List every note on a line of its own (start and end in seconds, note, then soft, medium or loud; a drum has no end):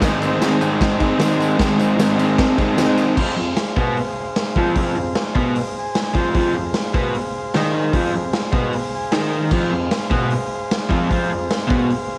0.00 0.40 G#2 medium
0.00 0.40 D#3 loud
0.00 0.23 G#3 loud
0.00 0.22 C4 loud
0.00 3.14 G#4 medium
0.00 3.15 C5 medium
0.00 kick loud
0.00 snare loud
0.00 ride loud
0.00 tambourine medium
0.04 0.19 D#4 loud
0.04 3.16 D#5 medium
0.20 0.42 C4 medium
0.20 0.43 D#4 medium
0.20 ride medium
0.20 tambourine medium
0.24 0.41 G#3 medium
0.40 1.57 G#2 loud
0.40 0.80 D#3 loud
0.40 0.64 G#3 loud
0.40 0.63 C4 loud
0.40 0.60 D#4 loud
0.40 snare loud
0.40 ride medium
0.40 tambourine loud
0.61 1.03 G#3 medium
0.61 1.01 C4 medium
0.61 0.98 D#4 medium
0.61 ride medium
0.61 tambourine medium
0.81 kick loud
0.81 snare loud
0.81 ride loud
0.81 tambourine soft
0.99 1.19 G#3 medium
0.99 1.21 C4 medium
0.99 1.21 D#4 medium
0.99 kick loud
0.99 ride medium
0.99 tambourine soft
1.18 1.57 D#3 medium
1.18 1.58 G#3 medium
1.18 1.59 C4 medium
1.18 snare loud
1.18 ride loud
1.18 tambourine loud
1.22 1.60 D#4 medium
1.40 ride medium
1.40 tambourine medium
1.57 1.95 G#2 loud
1.57 1.97 D#3 loud
1.57 1.80 G#3 loud
1.57 1.79 C4 loud
1.57 1.76 D#4 medium
1.57 kick loud
1.57 snare loud
1.57 ride loud
1.57 tambourine medium
1.77 1.98 G#3 medium
1.77 1.98 C4 medium
1.77 1.99 D#4 medium
1.77 ride medium
1.77 tambourine medium
1.97 2.37 G#2 loud
1.97 2.38 D#3 medium
1.97 2.18 G#3 medium
1.97 2.17 C4 loud
1.97 2.15 D#4 loud
1.97 snare loud
1.97 ride medium
1.97 tambourine loud
2.16 2.60 G#3 medium
2.16 2.59 C4 medium
2.16 2.56 D#4 medium
2.16 ride medium
2.16 tambourine medium
2.38 kick loud
2.38 snare loud
2.38 ride loud
2.57 2.78 C4 medium
2.57 2.79 D#4 medium
2.57 kick medium
2.57 ride medium
2.57 tambourine soft
2.62 2.77 G#3 medium
2.76 3.15 D#3 medium
2.76 3.16 G#3 medium
2.76 3.17 C4 medium
2.76 snare loud
2.76 ride loud
2.76 tambourine loud
2.80 3.18 D#4 medium
2.97 ride medium
2.97 tambourine medium
3.15 3.36 F2 medium
3.15 3.37 F3 loud
3.15 6.30 G#4 medium
3.15 6.30 C5 medium
3.15 kick loud
3.15 crash loud
3.20 5.58 F5 medium
3.37 3.53 F2 medium
3.56 snare loud
3.56 open hi-hat medium
3.76 3.96 B2 medium
3.76 3.96 B3 loud
3.76 kick loud
3.97 open hi-hat medium
4.36 snare loud
4.36 open hi-hat medium
4.56 4.75 F2 medium
4.56 4.76 F3 medium
4.56 kick loud
4.76 4.95 F2 loud
4.76 4.96 F3 medium
4.76 kick loud
4.76 open hi-hat medium
4.96 5.12 F2 medium
5.15 snare loud
5.15 open hi-hat medium
5.35 5.55 B2 medium
5.35 5.55 B3 loud
5.35 5.54 D#5 medium
5.35 kick loud
5.56 5.76 F5 medium
5.56 open hi-hat medium
5.79 5.94 G#5 medium
5.95 6.14 G#5 medium
5.95 snare loud
5.95 open hi-hat medium
6.14 6.34 F2 medium
6.14 6.34 F3 loud
6.14 6.34 C6 medium
6.14 kick loud
6.32 6.54 F2 medium
6.32 9.47 G#4 medium
6.32 9.49 C5 medium
6.32 kick loud
6.32 open hi-hat medium
6.36 6.55 F3 loud
6.36 9.32 F5 medium
6.55 6.71 F2 medium
6.74 snare loud
6.74 open hi-hat medium
6.94 7.13 B2 medium
6.94 7.14 B3 loud
6.94 kick loud
7.14 open hi-hat medium
7.54 7.93 D#3 medium
7.54 7.94 D#4 loud
7.54 snare loud
7.54 open hi-hat medium
7.93 8.12 F2 medium
7.93 8.13 F3 medium
7.93 kick loud
7.93 open hi-hat medium
8.15 8.30 F2 medium
8.33 snare loud
8.33 open hi-hat medium
8.53 8.72 B2 medium
8.53 8.73 B3 loud
8.53 kick loud
8.73 open hi-hat medium
8.95 9.12 G#5 medium
9.12 9.52 D#3 loud
9.12 9.52 D#4 loud
9.12 9.32 G5 medium
9.12 snare loud
9.12 open hi-hat medium
9.34 9.52 F5 medium
9.51 9.70 F2 medium
9.51 9.72 F3 loud
9.51 12.18 G#4 medium
9.51 12.18 C5 medium
9.51 kick loud
9.51 crash medium
9.56 12.18 F5 medium
9.71 9.87 F2 medium
9.91 snare loud
9.91 open hi-hat medium
10.10 10.30 B2 loud
10.10 10.31 B3 loud
10.10 kick loud
10.30 open hi-hat medium
10.71 snare loud
10.71 open hi-hat medium
10.89 11.09 F2 medium
10.89 11.10 F3 loud
10.89 kick loud
11.10 11.29 F2 loud
11.10 11.30 F3 loud
11.10 kick loud
11.10 open hi-hat medium
11.31 11.47 F2 medium
11.50 snare loud
11.50 open hi-hat medium
11.67 11.88 B2 medium
11.67 11.89 B3 loud
11.67 kick loud
11.90 open hi-hat medium